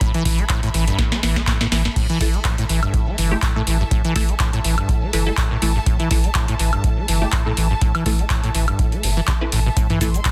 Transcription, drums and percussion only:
0.01 kick loud
0.01 closed hi-hat medium
0.14 closed hi-hat soft
0.25 kick medium
0.25 open hi-hat medium
0.39 closed hi-hat soft
0.50 kick loud
0.50 clap loud
0.50 closed hi-hat medium
0.63 closed hi-hat medium
0.74 open hi-hat medium
0.88 closed hi-hat medium
0.99 kick loud
0.99 snare medium
0.99 closed hi-hat medium
1.12 snare medium
1.12 closed hi-hat soft
1.23 snare medium
1.23 open hi-hat loud
1.36 kick medium
1.36 snare medium
1.47 kick loud
1.47 snare medium
1.47 clap loud
1.47 closed hi-hat medium
1.61 snare medium
1.61 closed hi-hat soft
1.72 snare medium
1.72 open hi-hat medium
1.85 snare medium
1.96 kick loud
1.96 closed hi-hat medium
1.96 crash medium
2.10 closed hi-hat soft
2.21 kick medium
2.21 open hi-hat loud
2.34 closed hi-hat soft
2.45 kick loud
2.45 clap loud
2.45 closed hi-hat medium
2.58 closed hi-hat medium
2.69 open hi-hat medium
2.83 closed hi-hat medium
2.83 high woodblock medium
2.94 kick loud
2.94 closed hi-hat medium
3.18 open hi-hat loud
3.42 kick loud
3.42 clap loud
3.42 closed hi-hat medium
3.67 open hi-hat medium
3.91 kick loud
3.91 closed hi-hat medium
4.05 closed hi-hat soft
4.16 kick medium
4.16 open hi-hat loud
4.29 closed hi-hat soft
4.40 kick loud
4.40 clap loud
4.40 closed hi-hat medium
4.53 closed hi-hat medium
4.64 open hi-hat medium
4.78 closed hi-hat soft
4.78 high woodblock medium
4.89 kick loud
4.89 closed hi-hat medium
5.13 open hi-hat loud
5.37 kick loud
5.37 clap loud
5.37 closed hi-hat medium
5.62 open hi-hat medium
5.86 kick loud
5.86 closed hi-hat medium
6.00 closed hi-hat soft
6.11 kick medium
6.11 open hi-hat loud
6.24 closed hi-hat soft
6.35 kick loud
6.35 clap loud
6.35 closed hi-hat medium
6.48 closed hi-hat soft
6.59 open hi-hat medium
6.73 closed hi-hat soft
6.73 high woodblock medium
6.84 kick loud
6.84 closed hi-hat medium
7.08 open hi-hat loud
7.32 kick loud
7.32 clap loud
7.32 closed hi-hat medium
7.57 open hi-hat loud
7.81 kick loud
7.81 closed hi-hat medium
7.95 closed hi-hat soft
7.95 high woodblock medium
8.06 kick medium
8.06 open hi-hat loud
8.19 closed hi-hat soft
8.30 kick loud
8.30 clap loud
8.30 closed hi-hat medium
8.44 closed hi-hat soft
8.55 open hi-hat medium
8.68 closed hi-hat soft
8.68 high woodblock medium
8.79 kick loud
8.79 closed hi-hat medium
8.92 closed hi-hat soft
9.03 open hi-hat loud
9.28 kick loud
9.28 clap loud
9.28 closed hi-hat medium
9.52 open hi-hat loud
9.77 kick loud
9.77 closed hi-hat medium
9.77 cabasa soft
9.90 closed hi-hat soft
9.90 mid tom medium
10.01 kick medium
10.01 open hi-hat loud
10.01 cabasa medium
10.14 closed hi-hat soft
10.14 cabasa soft
10.25 kick loud
10.25 clap loud
10.25 closed hi-hat medium
10.25 cabasa soft

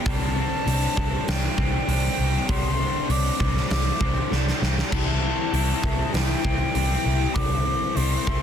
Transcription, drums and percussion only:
0.06 kick loud
0.06 open hi-hat soft
0.67 open hi-hat medium
0.97 kick medium
1.28 snare loud
1.28 open hi-hat medium
1.58 kick medium
1.89 open hi-hat medium
2.49 kick loud
2.49 open hi-hat medium
3.10 open hi-hat medium
3.40 kick medium
3.57 snare soft
3.71 snare loud
3.71 open hi-hat medium
4.01 kick medium
4.32 snare medium
4.48 snare medium
4.63 snare medium
4.78 snare medium
4.92 kick loud
4.92 crash loud
5.54 open hi-hat medium
5.84 kick medium
6.14 snare loud
6.14 open hi-hat medium
6.45 kick medium
6.75 open hi-hat medium
7.36 kick loud
7.36 open hi-hat medium
7.97 open hi-hat medium
8.27 kick medium

